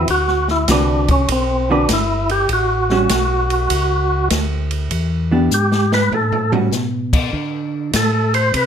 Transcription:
0.08 D2 F#4, kick, ride
0.28 snare
0.48 E4, snare
0.68 C2 D3 C4 D4 F#4 B4, kick, snare, hi-hat pedal, ride
1.08 C#4, kick, ride
1.28 B1 C4, kick, ride
1.70 D3 C4 D4 F#4 B4
1.89 G1, kick, snare, hi-hat pedal, ride
1.93 E4
2.29 G4, ride
2.49 A1, kick, ride
2.53 F#4
2.90 G3 C#4 F#4, snare
3.09 B1, kick, snare, hi-hat pedal, ride
3.50 ride
3.70 C#2, kick, ride
4.30 D2, kick, snare, hi-hat pedal, ride
4.71 ride
4.91 E2, kick, ride
5.31 E3 B3 D4 G4
5.51 G#2 G4, hi-hat pedal
5.72 snare
5.92 B4, snare
6.12 A2 A4, floor tom
6.32 floor tom
6.52 G3 C#4 F#4, floor tom
6.72 B2, snare, hi-hat pedal
7.13 kick, crash
7.33 D3, kick
7.93 A2 A4, kick, snare, hi-hat pedal, ride
8.34 C5, ride
8.54 C3 B4, kick, ride

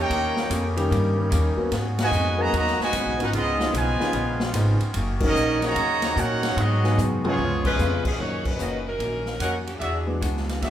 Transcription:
Already playing: C#3 A#3 C#4 G4 A#4 C#5
0.00 D#4 G5
0.08 D#2 D#3 G3 A#3 C#4 D#4 G4, kick, ride
0.36 snare
0.49 F2 D#3 A#3 C#4 G4, kick, hi-hat pedal, ride
0.77 D#3 G3 A#3 C#4 G4, ride
0.88 G2 D#3 A#3 C#4 G4, kick, ride
1.17 D#3 G3 A#3 C#4 G4
1.29 D#2 D#3 A#3 C#4 G4, kick, hi-hat pedal, ride
1.56 F#3 A#3 B3 C#4 F#4, muted upright bass stroke
1.71 G#2 C#3 F#3 B3 C#4 F#4, kick, snare, ride
1.99 B2 D#3 G#3 F#4 B4 D#5 G#5, snare, ride
2.11 F2 G#2 F#3 B3 C#4, hi-hat pedal
2.38 D#3 F#3 A#3 B3 C#4 F#4 G#4 B4 D#5 A#5
2.53 D#2 G#2 D#3 F#3 A#3 B3 C#4 F#4 B4 D#5 A#5, kick, ride
2.67 snare
2.79 B2 D#3 G#3 F#4 B4 D#5 G#5, muted upright bass stroke, snare
2.93 D#2 G#2 F#3 B3 C#4, kick, hi-hat pedal, ride
3.05 B1
3.18 G#1 F3 B3 C#4 D#4 F#4 A#4 B4 F#5, ride
3.33 C#2 C#3 D#3 F3 G#3 B3 C#4 D#4 F4 G#4 D#5, kick, ride
3.60 snare
3.73 B1 C#3 F3 G#3 B3 D#4 F4 B4 D#5 G#5, kick, hi-hat pedal, ride
3.99 F3 B3 C#4 D#4 G#4, muted upright bass stroke, snare
4.13 A#1 C#3 F3 B3 D#4, kick, ride
4.40 snare
4.53 G#1 C#3 F3 B3 C#4 D#4 G#4, kick, hi-hat pedal, ride
4.80 muted upright bass stroke, ride
4.94 F#1 F#2 D#3 A#3 C#4 F#4, kick, ride
5.20 D#3 F#3 A#3 C#4 D#4 A#4 D#5, kick, crash
5.24 F#4
5.34 A#1 F#2 D#3 A#3 C#4, hi-hat pedal
5.62 C#3 D#3 A#3 F#4 C#5 D#5 A#5, snare, ride
5.74 D#2 F#2 D#3 A#3 C#4, kick, ride
6.02 snare, ride
6.15 F#2 A#2 D#3 A#3 C#4 D#4 F#4 A#4 C#5 F#5, kick, hi-hat pedal
6.43 snare, ride
6.55 G#2 F#3 G#3 B3 D#4 F#4 G#4 D#5, kick, ride
6.84 F#3 G#3 B3 D#4 G#4, snare
6.96 F#2 G#2 F#3 B3 D#4, hi-hat pedal, mid tom
7.24 F3 G#3 B3 C#4 F4 G#4 C#5, mid tom
7.37 C#2 C#3 G#3 B3 F4, floor tom
7.41 F4
7.65 G#3 C#4 F4 B4, kick, crash
7.78 F2 C#3 G#3 B3 F4, hi-hat pedal
8.05 F3 B3 C#4 G#4, muted upright bass stroke, kick, crash
8.17 F#2 A#2 D#3 F#3 A#3 C#4 D#4 F#4 C#5, kick
8.45 F#3 C#4 D#4 B4, kick, crash
8.58 F#1 F#2 D#3 A#3 C#4 F#4 A#4 C#5 D#5, hi-hat pedal
8.87 F#3 C#4 D#4 A#4
8.99 A#1 F#2 D#3 A#3 C#4, kick, ride
9.26 snare
9.39 F2 F#2 D#3 F#3 A#3 C#4 D#4 F#4 A#4 C#5 F#5, kick, hi-hat pedal, ride
9.67 F#3 B3 D4 G#4, ride
9.79 E2 E3 G#3 D4 F#4 G#4 D5 E5, kick, ride
10.07 E3 G#3 B3 D4 F#4
10.20 C#2 E3 G#3 D4 F#4, kick, hi-hat pedal, ride
10.37 snare
10.49 snare, ride
10.61 D2 E3 G#3 D4 F#4 G#4 D5 E5, kick, snare, ride

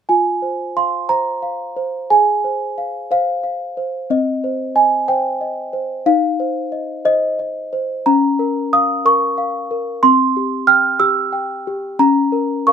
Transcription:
0.09 F4 G#5
0.42 C5
0.77 F5 C6
1.09 C5 A#5
1.42 F5
1.77 C5
2.10 G#4 G#5
2.44 C5
2.78 F5
3.11 C5 F5
3.44 F5
3.77 C5
4.10 C4 D#5
4.44 C5
4.76 D#5 G#5
5.08 C5 G5
5.41 D#5
5.73 C5
6.06 D#4 F5
6.40 C5
6.72 D#5
7.05 C5 D#5
7.39 D#5
7.73 C5
8.06 C#4 A#5
8.39 A#4
8.73 F5 D#6
9.05 A#4 C#6
9.38 F5
9.71 A#4
10.03 C4 C6
10.37 G4
10.67 G5 F6
11.00 G4 E6
11.33 G5
11.67 G4
11.99 C#4 A#5
12.32 A#4
12.67 A#4 F5 C#6

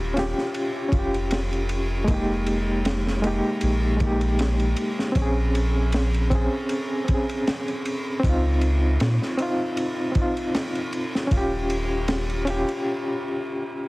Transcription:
Already playing: D#1 C#4 F4 G4
0.14 C#4 F4, snare, ride
0.19 G4
0.38 snare
0.54 ride
0.89 F1 C#4, kick, ride
0.94 F4
0.99 G4
1.14 ride
1.31 snare, ride
1.53 ride
1.69 ride
2.04 F1 G#3 A#3, kick, ride
2.11 D#4 G4
2.46 ride
2.85 snare, ride
3.07 snare
3.22 G#3 A#3 D#4, ride
3.27 G4
3.61 A#1, ride
3.96 G#3 A#3, kick, ride
4.03 D#4 G4
4.21 ride
4.39 snare, ride
4.60 ride
4.76 ride
4.99 snare
5.12 A#1 C4, kick, ride
5.17 C#4
5.22 G#4
5.55 ride
5.92 snare, ride
6.14 ride
6.30 C4 C#4, kick, ride
6.35 G#4
6.69 ride
7.04 C4, ride
7.09 C#4, kick
7.14 G#4
7.29 ride
7.47 snare, ride
7.68 ride
7.85 ride
8.20 C#2 C4, kick
8.24 D#4, ride
8.29 F4
8.61 ride
9.00 A#2, snare, ride
9.22 snare
9.37 C4 D#4, ride
9.42 F4
9.77 ride
10.12 C4, kick, ride
10.17 D#4
10.21 F4
10.37 ride
10.55 snare, ride
10.75 ride
10.93 ride
11.15 snare
11.27 D#1 C#4, kick, ride
11.32 F4
11.37 G4
11.70 ride
12.08 snare, ride
12.29 ride
12.45 C#4 F4, ride
12.50 G4
12.68 ride

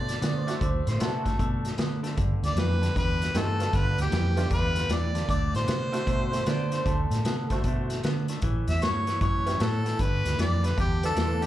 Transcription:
Already playing: B2 D3 A3 D5
0.08 snare, closed hi-hat
0.22 D3 B3, snare, closed hi-hat
0.37 C5
0.47 D3 A3 C4 E4 F#4, snare, closed hi-hat
0.61 D2 D3 A3 C5, kick, closed hi-hat
0.87 A2 C5, snare, closed hi-hat
0.99 C3 D3 A3 B3 C4 E4 F#4 A4, snare, closed hi-hat
1.25 D3 A3, kick, snare, closed hi-hat
1.39 B2 D3 A3, kick, closed hi-hat
1.65 snare, closed hi-hat
1.78 D3 B3, snare, closed hi-hat
2.03 D3 A3, snare, closed hi-hat
2.17 G1 G2 D3, kick, closed hi-hat
2.43 D2 D5, snare, closed hi-hat
2.56 F2 G2 E3, snare, closed hi-hat
2.60 B4
2.81 G2 D3, snare, closed hi-hat
2.95 E2 G2 D3 B4, kick, snare, closed hi-hat
3.22 snare, closed hi-hat
3.34 G2 E3 A#3 C4 D#4 F#4 A4, snare, closed hi-hat
3.60 G2 D3 A3 B3 D4 F4, snare, closed hi-hat
3.73 G1 G2 D3 B4, kick, snare, closed hi-hat
3.98 D2 G4, snare, closed hi-hat
4.11 F2 G2 E3, snare, closed hi-hat
4.36 G2 D3 A3 B3 D4 F4, snare, closed hi-hat
4.50 E2 G2 D3 B4, kick, closed hi-hat
4.76 snare, closed hi-hat
4.89 E2 G2 E3 D5, snare, closed hi-hat
5.14 G2 D3, snare, closed hi-hat
5.28 D2 D3 A3 D5, kick, closed hi-hat
5.55 A2 C5, snare, closed hi-hat
5.67 C3 D3 B3, snare, closed hi-hat
5.92 D3 A3 C4 E4 F#4, snare, closed hi-hat
6.05 B2 D3 A3 C5, kick, closed hi-hat
6.32 A3 C4 E4 F#4, snare, closed hi-hat
6.46 D3 B3 D5, snare, closed hi-hat
6.72 D3 A3 C5, snare, closed hi-hat
6.86 D2 D3 A3 A4, kick, closed hi-hat
7.10 A2, snare, closed hi-hat
7.24 C3 D3 B3, snare, closed hi-hat
7.50 D3 A3 E4 F#4 C5, kick, snare, closed hi-hat
7.64 B2 D3 A3, kick, closed hi-hat
7.90 snare, closed hi-hat
8.03 D3 B3, snare, closed hi-hat
8.28 D3 A3, snare, closed hi-hat
8.42 A1 A2 E3, kick, closed hi-hat
8.67 E2 E5, snare, closed hi-hat
8.82 G2 A2 F#3 C#5, snare, closed hi-hat
9.07 A2 E3, snare, closed hi-hat
9.21 F#2 A2 E3 C#5, kick, closed hi-hat
9.46 B3 C#4 E4 G4, snare, closed hi-hat
9.60 A2 F#3 A4, snare, closed hi-hat
9.85 A2 E3, snare, closed hi-hat
9.99 G1 G2 D3 B4, kick, closed hi-hat
10.25 D2, snare, closed hi-hat
10.38 F2 G2 E3 D5, snare, closed hi-hat
10.63 G2 D3 B4, snare, closed hi-hat
10.77 E2 G2 D3 G4, kick, closed hi-hat
11.03 B3 D4 F4 A4, snare, closed hi-hat
11.16 E2 G2 E3, snare, closed hi-hat
11.41 G2 D3, closed hi-hat

